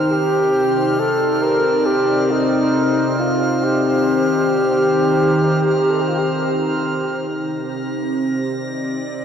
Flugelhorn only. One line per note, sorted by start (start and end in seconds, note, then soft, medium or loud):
0.12 1.01 G4 loud
0.99 1.44 A4 loud
1.43 1.87 A#4 loud
1.86 2.32 G4 loud
2.31 3.21 D#4 medium
3.20 3.65 F4 medium
3.64 5.92 G4 loud
5.90 6.03 A4 medium
6.01 6.10 G4 medium
6.09 6.20 F4 medium
6.19 6.28 G4 medium